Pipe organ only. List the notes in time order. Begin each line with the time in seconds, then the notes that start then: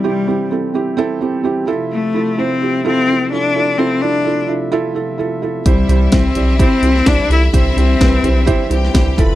Already playing: E3 G3 C4 G4
1.67 C3 F3 A3 E5
5.65 E3 G3 C4
7.53 D4
9.18 F3 A3 E5